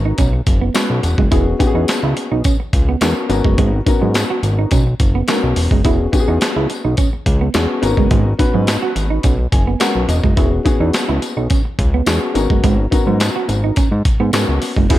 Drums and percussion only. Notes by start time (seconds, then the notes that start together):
0.18 kick, closed hi-hat, tambourine
0.46 kick, closed hi-hat, tambourine
0.75 snare, clap, closed hi-hat, tambourine
1.03 closed hi-hat, tambourine
1.18 kick
1.31 kick, closed hi-hat, tambourine
1.60 kick, closed hi-hat, tambourine
1.88 snare, clap, closed hi-hat, tambourine
2.17 closed hi-hat, tambourine
2.44 kick, closed hi-hat, tambourine
2.73 kick, closed hi-hat, tambourine
3.01 snare, clap, closed hi-hat, tambourine
3.30 closed hi-hat, tambourine
3.44 kick
3.58 kick, closed hi-hat
3.87 kick, closed hi-hat, tambourine
4.14 snare, clap, closed hi-hat, tambourine
4.43 closed hi-hat, tambourine
4.71 kick, closed hi-hat, tambourine
5.00 kick, closed hi-hat, tambourine
5.28 snare, clap, closed hi-hat, tambourine
5.56 open hi-hat, tambourine
5.71 kick
5.85 kick, closed hi-hat, tambourine
6.13 kick, closed hi-hat, tambourine
6.41 snare, clap, closed hi-hat, tambourine
6.70 closed hi-hat, tambourine
6.97 kick, closed hi-hat, tambourine
7.26 kick, closed hi-hat
7.54 snare, clap, closed hi-hat, tambourine
7.83 closed hi-hat, tambourine
7.97 kick
8.11 kick, closed hi-hat
8.39 kick, closed hi-hat, tambourine
8.67 snare, clap, closed hi-hat, tambourine
8.96 closed hi-hat, tambourine
9.23 kick, closed hi-hat, tambourine
9.52 kick, closed hi-hat, tambourine
9.80 snare, clap, closed hi-hat, tambourine
10.09 closed hi-hat, tambourine
10.24 kick
10.37 kick, closed hi-hat, tambourine
10.66 kick, closed hi-hat, tambourine
10.93 snare, clap, closed hi-hat, tambourine
11.22 closed hi-hat, tambourine
11.50 kick, closed hi-hat, tambourine
11.79 kick, closed hi-hat
12.06 snare, clap, closed hi-hat, tambourine
12.35 closed hi-hat, tambourine
12.50 kick
12.64 kick, closed hi-hat, tambourine
12.92 kick, closed hi-hat, tambourine
13.20 snare, clap, closed hi-hat, tambourine
13.49 closed hi-hat, tambourine
13.76 kick, closed hi-hat, tambourine
14.05 kick, closed hi-hat, tambourine
14.33 snare, clap, closed hi-hat, tambourine
14.62 open hi-hat, tambourine
14.76 kick
14.90 kick, closed hi-hat, crash, tambourine